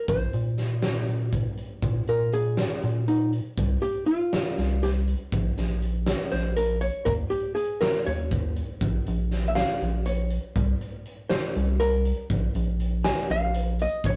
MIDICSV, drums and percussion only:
0, 0, Header, 1, 2, 480
1, 0, Start_track
1, 0, Tempo, 498339
1, 87, Time_signature, 7, 3, 24, 8
1, 13641, End_track
2, 0, Start_track
2, 0, Title_t, "Drums"
2, 77, Note_on_c, 9, 42, 81
2, 80, Note_on_c, 9, 36, 98
2, 173, Note_off_c, 9, 42, 0
2, 176, Note_off_c, 9, 36, 0
2, 316, Note_on_c, 9, 42, 55
2, 413, Note_off_c, 9, 42, 0
2, 556, Note_on_c, 9, 38, 29
2, 556, Note_on_c, 9, 42, 55
2, 652, Note_off_c, 9, 38, 0
2, 652, Note_off_c, 9, 42, 0
2, 794, Note_on_c, 9, 38, 102
2, 794, Note_on_c, 9, 42, 78
2, 890, Note_off_c, 9, 38, 0
2, 890, Note_off_c, 9, 42, 0
2, 1038, Note_on_c, 9, 42, 57
2, 1135, Note_off_c, 9, 42, 0
2, 1273, Note_on_c, 9, 42, 72
2, 1278, Note_on_c, 9, 36, 92
2, 1369, Note_off_c, 9, 42, 0
2, 1374, Note_off_c, 9, 36, 0
2, 1515, Note_on_c, 9, 42, 52
2, 1611, Note_off_c, 9, 42, 0
2, 1753, Note_on_c, 9, 42, 69
2, 1757, Note_on_c, 9, 36, 95
2, 1850, Note_off_c, 9, 42, 0
2, 1854, Note_off_c, 9, 36, 0
2, 1997, Note_on_c, 9, 42, 53
2, 2093, Note_off_c, 9, 42, 0
2, 2239, Note_on_c, 9, 42, 56
2, 2336, Note_off_c, 9, 42, 0
2, 2479, Note_on_c, 9, 38, 99
2, 2479, Note_on_c, 9, 42, 73
2, 2575, Note_off_c, 9, 38, 0
2, 2575, Note_off_c, 9, 42, 0
2, 2719, Note_on_c, 9, 42, 59
2, 2816, Note_off_c, 9, 42, 0
2, 2964, Note_on_c, 9, 42, 74
2, 3060, Note_off_c, 9, 42, 0
2, 3202, Note_on_c, 9, 42, 56
2, 3299, Note_off_c, 9, 42, 0
2, 3443, Note_on_c, 9, 42, 77
2, 3444, Note_on_c, 9, 36, 100
2, 3540, Note_off_c, 9, 36, 0
2, 3540, Note_off_c, 9, 42, 0
2, 3688, Note_on_c, 9, 42, 60
2, 3785, Note_off_c, 9, 42, 0
2, 3929, Note_on_c, 9, 42, 57
2, 4025, Note_off_c, 9, 42, 0
2, 4169, Note_on_c, 9, 38, 98
2, 4169, Note_on_c, 9, 42, 75
2, 4266, Note_off_c, 9, 38, 0
2, 4266, Note_off_c, 9, 42, 0
2, 4413, Note_on_c, 9, 38, 33
2, 4413, Note_on_c, 9, 42, 59
2, 4509, Note_off_c, 9, 38, 0
2, 4509, Note_off_c, 9, 42, 0
2, 4648, Note_on_c, 9, 38, 30
2, 4648, Note_on_c, 9, 42, 75
2, 4744, Note_off_c, 9, 38, 0
2, 4744, Note_off_c, 9, 42, 0
2, 4888, Note_on_c, 9, 42, 56
2, 4984, Note_off_c, 9, 42, 0
2, 5128, Note_on_c, 9, 36, 104
2, 5130, Note_on_c, 9, 42, 72
2, 5224, Note_off_c, 9, 36, 0
2, 5226, Note_off_c, 9, 42, 0
2, 5370, Note_on_c, 9, 38, 32
2, 5370, Note_on_c, 9, 42, 56
2, 5467, Note_off_c, 9, 38, 0
2, 5467, Note_off_c, 9, 42, 0
2, 5606, Note_on_c, 9, 42, 56
2, 5703, Note_off_c, 9, 42, 0
2, 5842, Note_on_c, 9, 38, 100
2, 5842, Note_on_c, 9, 42, 72
2, 5938, Note_off_c, 9, 38, 0
2, 5938, Note_off_c, 9, 42, 0
2, 6082, Note_on_c, 9, 38, 33
2, 6082, Note_on_c, 9, 42, 57
2, 6178, Note_off_c, 9, 38, 0
2, 6178, Note_off_c, 9, 42, 0
2, 6321, Note_on_c, 9, 42, 73
2, 6418, Note_off_c, 9, 42, 0
2, 6563, Note_on_c, 9, 42, 57
2, 6659, Note_off_c, 9, 42, 0
2, 6799, Note_on_c, 9, 42, 80
2, 6803, Note_on_c, 9, 36, 107
2, 6895, Note_off_c, 9, 42, 0
2, 6899, Note_off_c, 9, 36, 0
2, 7045, Note_on_c, 9, 42, 60
2, 7141, Note_off_c, 9, 42, 0
2, 7286, Note_on_c, 9, 42, 56
2, 7382, Note_off_c, 9, 42, 0
2, 7527, Note_on_c, 9, 38, 99
2, 7527, Note_on_c, 9, 42, 76
2, 7624, Note_off_c, 9, 38, 0
2, 7624, Note_off_c, 9, 42, 0
2, 7771, Note_on_c, 9, 42, 62
2, 7868, Note_off_c, 9, 42, 0
2, 8007, Note_on_c, 9, 42, 81
2, 8008, Note_on_c, 9, 36, 98
2, 8103, Note_off_c, 9, 42, 0
2, 8104, Note_off_c, 9, 36, 0
2, 8247, Note_on_c, 9, 42, 59
2, 8343, Note_off_c, 9, 42, 0
2, 8486, Note_on_c, 9, 42, 81
2, 8487, Note_on_c, 9, 36, 109
2, 8582, Note_off_c, 9, 42, 0
2, 8583, Note_off_c, 9, 36, 0
2, 8729, Note_on_c, 9, 42, 60
2, 8825, Note_off_c, 9, 42, 0
2, 8971, Note_on_c, 9, 38, 32
2, 8971, Note_on_c, 9, 42, 57
2, 9067, Note_off_c, 9, 38, 0
2, 9067, Note_off_c, 9, 42, 0
2, 9210, Note_on_c, 9, 38, 104
2, 9210, Note_on_c, 9, 42, 73
2, 9306, Note_off_c, 9, 38, 0
2, 9306, Note_off_c, 9, 42, 0
2, 9445, Note_on_c, 9, 42, 59
2, 9541, Note_off_c, 9, 42, 0
2, 9684, Note_on_c, 9, 42, 78
2, 9780, Note_off_c, 9, 42, 0
2, 9922, Note_on_c, 9, 42, 55
2, 10018, Note_off_c, 9, 42, 0
2, 10166, Note_on_c, 9, 42, 78
2, 10169, Note_on_c, 9, 36, 102
2, 10263, Note_off_c, 9, 42, 0
2, 10265, Note_off_c, 9, 36, 0
2, 10411, Note_on_c, 9, 42, 59
2, 10507, Note_off_c, 9, 42, 0
2, 10647, Note_on_c, 9, 42, 52
2, 10744, Note_off_c, 9, 42, 0
2, 10886, Note_on_c, 9, 38, 105
2, 10886, Note_on_c, 9, 42, 81
2, 10982, Note_off_c, 9, 38, 0
2, 10982, Note_off_c, 9, 42, 0
2, 11127, Note_on_c, 9, 42, 64
2, 11223, Note_off_c, 9, 42, 0
2, 11368, Note_on_c, 9, 42, 82
2, 11464, Note_off_c, 9, 42, 0
2, 11606, Note_on_c, 9, 42, 60
2, 11702, Note_off_c, 9, 42, 0
2, 11846, Note_on_c, 9, 42, 89
2, 11847, Note_on_c, 9, 36, 106
2, 11942, Note_off_c, 9, 42, 0
2, 11943, Note_off_c, 9, 36, 0
2, 12086, Note_on_c, 9, 42, 67
2, 12182, Note_off_c, 9, 42, 0
2, 12326, Note_on_c, 9, 42, 62
2, 12422, Note_off_c, 9, 42, 0
2, 12564, Note_on_c, 9, 38, 105
2, 12564, Note_on_c, 9, 42, 85
2, 12661, Note_off_c, 9, 38, 0
2, 12661, Note_off_c, 9, 42, 0
2, 12807, Note_on_c, 9, 42, 65
2, 12904, Note_off_c, 9, 42, 0
2, 13044, Note_on_c, 9, 42, 83
2, 13140, Note_off_c, 9, 42, 0
2, 13284, Note_on_c, 9, 42, 61
2, 13380, Note_off_c, 9, 42, 0
2, 13524, Note_on_c, 9, 36, 107
2, 13525, Note_on_c, 9, 42, 82
2, 13621, Note_off_c, 9, 36, 0
2, 13621, Note_off_c, 9, 42, 0
2, 13641, End_track
0, 0, End_of_file